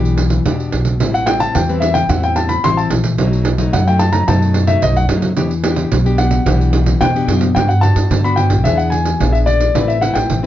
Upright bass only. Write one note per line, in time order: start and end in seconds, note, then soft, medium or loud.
0.00 0.38 B1 medium
0.45 0.69 E2 medium
0.73 1.00 B1 medium
1.00 1.47 A1 loud
1.55 2.01 E2 loud
2.09 2.56 E2 loud
2.64 2.87 A1 medium
2.91 3.19 A#1 medium
3.19 3.65 B1 loud
3.73 4.20 F#2 medium
4.28 4.74 F#2 loud
4.83 5.06 B1 medium
5.09 5.37 F#2 medium
5.37 5.83 E2 loud
5.92 6.38 B1 loud
6.46 6.92 B1 loud
7.00 7.25 E2 medium
7.28 7.52 F#2 medium
7.56 7.91 G2 loud
7.96 8.08 G2 medium
8.10 8.52 G2 medium
8.50 8.62 B1 medium
8.65 9.12 E2 medium
9.20 9.67 A#1 medium
9.75 10.10 A1 loud
10.14 10.27 A1 medium
10.30 10.46 A1 medium